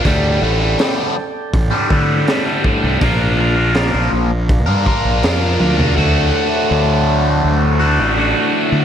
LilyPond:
<<
  \new Staff \with { instrumentName = "Tonewheel organ" } { \time 4/4 \tempo 4 = 81 <a' d'' g'' a''>1 | <bes' d'' f'' bes''>1 | <a' d'' fis'' a''>1 | }
  \new Staff \with { instrumentName = "Overdriven electric guitar" } { \clef bass \time 4/4 <d, a, d g>8 <d, a, d g>16 <a, d g>16 <d, a, d g>16 <a, d g>8. r16 <a, d g>16 <d, a, d g>8 <d, a, d g>16 <a, d g>16 <d, a, d g>16 <a, d g>16 | <bes, f bes d' f' bes'>8 <bes d' f' bes'>16 <bes d' f' bes'>16 <bes, f bes d' f' bes'>16 <bes d' f' bes'>8. r16 <bes d' f' bes'>16 <bes d' f' bes'>8 <bes, f bes d' f' bes'>16 <bes d' f' bes'>16 <bes d' f' bes'>16 <bes d' f' bes'>16 | <d, a, d a fis'>2~ <d, a, d a fis'>8 <d, a, d a fis'>8 <d, a, d a fis'>4 | }
  \new Staff \with { instrumentName = "Fingered electric bass" } { \clef bass \time 4/4 d,8 a,,8 r4 a,,16 r16 d8 r8. c,16 | bes,,4~ bes,,16 bes,,16 bes,,8. g,16 r16 bes,,16 f,8 d,8 | d,8 r8 d,4 d,8. a,,8 r8 d16 | }
  \new DrumStaff \with { instrumentName = "Drums" } \drummode { \time 4/4 <hho bd>4 <hho sn>4 <hho bd>8 bd8 <hho sn>8 bd8 | <hho bd>4 <hho sn>4 <hho bd>8 bd8 <hho sn>8 tommh16 tomfh16 | r4 r4 r4 r4 | }
>>